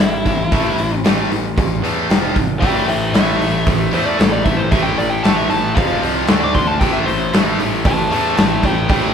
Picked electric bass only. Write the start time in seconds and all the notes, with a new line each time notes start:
0.01 A1
0.26 A1
0.52 A1
0.78 A1
1.05 A1
1.31 A1
1.58 A1
1.83 E2
2.09 F1
2.36 G#1
2.62 A1
2.88 A1
3.13 A1
3.40 A1
3.67 A1
3.93 E2
4.20 A1
4.45 A1
4.72 A1
4.98 A1
5.25 A1
5.51 A1
5.77 F1
6.02 C2
6.29 D2
6.55 D2
6.81 A1
7.07 A1
7.35 A1
7.59 A1
7.85 A1
8.11 E2
8.37 A1
8.64 A1
8.90 A1